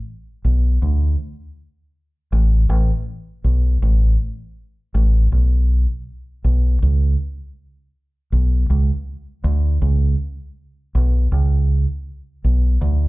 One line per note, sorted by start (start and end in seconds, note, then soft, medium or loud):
0.45 0.77 B1 medium
0.82 1.15 D2 medium
2.32 2.65 A1 medium
2.69 2.90 A1 loud
3.44 3.77 B1 medium
3.82 4.15 A1 loud
4.95 5.27 A1 medium
5.32 5.85 B1 medium
6.44 6.77 B1 medium
6.82 7.15 C#2 loud
8.32 8.65 B1 medium
8.70 8.90 C#2 medium
9.44 9.77 D2 loud
9.82 10.14 C#2 loud
10.95 11.27 B1 medium
11.32 11.85 C#2 medium
12.44 12.77 B1 medium
12.81 13.08 D2 loud